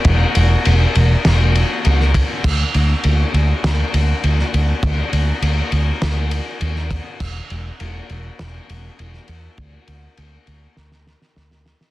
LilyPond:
<<
  \new Staff \with { instrumentName = "Fingered electric bass" } { \clef bass \time 4/4 \key cis \phrygian \tempo 4 = 101 e,,8 e,,8 e,,8 e,,8 e,,4 cis,4 | d,8 d,8 d,8 d,8 d,8 d,8 d,8 d,8 | d,8 d,8 d,8 d,8 d,4 ees,4 | e,,8 e,,8 e,,8 e,,8 e,,8 e,,8 e,,8 e,8 |
d,8 d,8 d,8 d,8 d,4 d,4 | }
  \new DrumStaff \with { instrumentName = "Drums" } \drummode { \time 4/4 <bd cymr>8 cymr8 cymr8 cymr8 <cymr sn>8 cymr8 cymr16 sn16 <bd cymr>8 | <cymc bd>8 cymr8 cymr8 cymr8 <cymr sn>8 cymr8 cymr16 sn16 cymr8 | <bd cymr>8 cymr8 cymr8 cymr8 <cymr sn>8 cymr8 cymr16 sn16 <bd cymr>8 | <cymc bd>8 cymr8 cymr8 cymr8 <cymr sn>8 cymr8 cymr16 sn16 cymr8 |
<bd cymr>8 cymr8 cymr8 cymr8 sn16 sn16 sn16 sn16 sn16 sn16 sn16 sn16 | }
>>